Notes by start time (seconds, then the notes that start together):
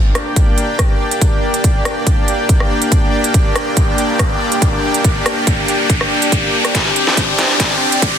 Already playing: A#3 D4 G4 D5 G5, riser
0.15 cross-stick, closed hi-hat
0.36 kick, closed hi-hat
0.58 closed hi-hat
0.79 kick, cross-stick, closed hi-hat
1.11 closed hi-hat
1.22 kick, closed hi-hat
1.54 closed hi-hat
1.64 kick, closed hi-hat
1.85 cross-stick, closed hi-hat
2.07 kick, closed hi-hat
2.28 closed hi-hat
2.49 kick, closed hi-hat
2.60 cross-stick
2.82 closed hi-hat
2.92 kick, closed hi-hat
3.24 closed hi-hat
3.34 kick, closed hi-hat
3.56 cross-stick, closed hi-hat
3.77 kick, closed hi-hat
3.98 closed hi-hat
4.19 kick, cross-stick, closed hi-hat
4.52 closed hi-hat
4.62 kick, closed hi-hat
4.94 closed hi-hat
5.04 kick, closed hi-hat
5.26 cross-stick, closed hi-hat
5.47 kick, closed hi-hat
5.68 closed hi-hat
5.90 kick, closed hi-hat
6.01 cross-stick
6.22 closed hi-hat
6.32 kick, closed hi-hat
6.65 cross-stick, closed hi-hat
6.75 C4 D5, kick, snare, closed hi-hat
6.96 closed hi-hat
7.07 snare
7.17 kick, closed hi-hat
7.39 snare, closed hi-hat
7.60 kick, snare, closed hi-hat
7.92 closed hi-hat
8.02 kick, closed hi-hat